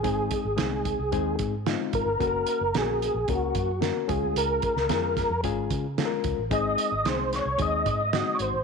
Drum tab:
HH |x-x-x-x-x-x-x-x-|x-x-x-x-x-x-x-x-|x-x-x-x-x-x-x-x-|x-x-x-x-x-x-x-x-|
SD |----o-------o---|----o-------o---|---oo-o-----o---|----o-o-----o---|
BD |o-o---o-o-o---o-|o-------o-o---o-|--o---o-o-o---o-|o-------o-o-----|